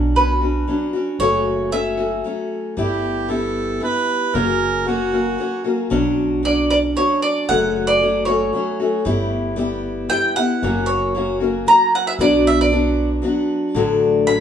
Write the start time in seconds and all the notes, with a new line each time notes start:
Already playing: B1 B2 F#3 C#4 D4 F#4
0.15 F#3 C#4 D4 F#4 B4
0.41 C#4 D4 F#4
0.67 F#3 C#4 D4 F#4
0.93 C#4 D4 F#4
1.19 F#1 F#2 C#3 F#3 A3 C#4 F#4 C#5
1.72 F#3 A3 C#4 F#4 E5
1.97 F#3 A3 C#4 F#4
2.24 F#3 A3 C#4 F#4
2.77 G1 G3 B3 E4 G4
3.28 G3 B3 E4 G4 A4
3.80 G3 B3 E4 G4 B4
4.33 F#1 F#2 C#3 F#3 A#3 C#4 F#4 A#4
4.86 F#3 A#3 C#4 F#4
5.12 F#3 A#3 C#4 F#4
5.38 F#3 A#3 C#4 F#4
5.64 F#3 A#3 C#4 F#4
5.90 B1 B2 F#3 C#4 D4 F#4
6.43 F#3 C#4 D4 F#4 D5
6.71 D5
6.95 F#3 C#4 D4 F#4 C#5
7.22 D5
7.49 F#1 F#2 C#3 F#3 A3 C#4 F#4 F#5
7.87 D5
8.01 F#3 A3 C#4 F#4
8.25 A3 C#4 F#4 C#5
8.30 F#3
8.53 F#3 A3 C#4 F#4
8.80 F#3 A3 C#4 F#4
9.05 G1 G3 B3 E4 G4
9.56 G3 B3 E4 G4
10.09 G3 B3 E4 G4 G5
10.36 B3 E4 G4 F#5
10.63 F#1 F#2 C#3 F#3 A#3 C#4 F#4
10.86 C#5
11.15 F#3 A#3 C#4 F#4
11.40 F#3 A#3 C#4 F#4
11.66 F#3 A#3 C#4 F#4 A#5
11.95 F#5
12.07 E5
12.19 B1 B2 F#3 B3 D4 F#4 D5
12.47 E5
12.61 D5
12.71 F#3 B3 D4 F#4
13.22 F#3 B3 D4 F#4
13.74 A1 A2 D3 F#3 A3 D4 F#4
14.27 F#3 A3 D4 F#4 B5